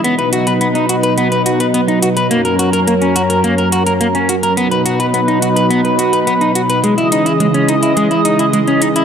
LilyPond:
<<
  \new Staff \with { instrumentName = "Clean electric guitar" } { \time 4/4 \key b \major \tempo 4 = 106 b16 b'16 fis'16 b'16 b16 dis'16 fis'16 b'16 b16 b'16 fis'16 b'16 b16 dis'16 fis'16 b'16 | ais16 ais'16 fis'16 ais'16 ais16 cis'16 fis'16 ais'16 ais16 ais'16 fis'16 ais'16 ais16 cis'16 fis'16 ais'16 | b16 b'16 fis'16 b'16 b16 dis'16 fis'16 b'16 b16 b'16 fis'16 b'16 b16 dis'16 fis'16 b'16 | gis16 e'16 dis'16 e'16 gis16 cis'16 dis'16 e'16 gis16 e'16 dis'16 e'16 gis16 cis'16 dis'16 e'16 | }
  \new Staff \with { instrumentName = "Analog synth pad" } { \clef bass \time 4/4 \key b \major << { <b, dis' b'>1 | <fis, cis' ais'>1 | <b, dis' b'>1 | <cis e dis''>1 | } \\ { fis1~ | fis1 | fis1 | gis1 | } >> }
  \new DrumStaff \with { instrumentName = "Drums" } \drummode { \time 4/4 hh16 hh16 hh16 hh16 hh16 hh16 hh16 hh16 hh16 hh16 hh16 hh16 hh16 hh16 hh16 hh16 | hh16 hh16 hh16 hh16 hh16 hh16 hh16 hh16 hh16 hh16 hh16 hh16 hh16 hh16 hh16 hh16 | hh16 hh16 hh16 hh16 hh16 hh16 hh16 hh16 hh16 hh16 hh16 hh16 hh16 hh16 hh16 hh16 | hh16 hh16 hh16 hh16 hh16 hh16 hh16 hh16 hh16 hh16 hh16 hh16 hh16 hh16 hh16 hh16 | }
>>